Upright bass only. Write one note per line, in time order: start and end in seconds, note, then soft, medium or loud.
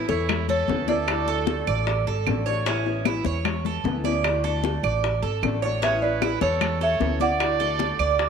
0.09 0.65 E2 loud
0.68 1.61 D2 medium
1.67 2.04 A1 loud
2.07 2.25 G#1 medium
2.27 3.19 A1 medium
3.25 3.80 E2 medium
3.84 4.77 D2 medium
4.83 5.20 A1 medium
5.23 5.41 G#1 medium
5.43 6.35 A1 medium
6.41 6.97 E2 loud
7.01 7.93 D2 medium
7.99 8.29 D2 medium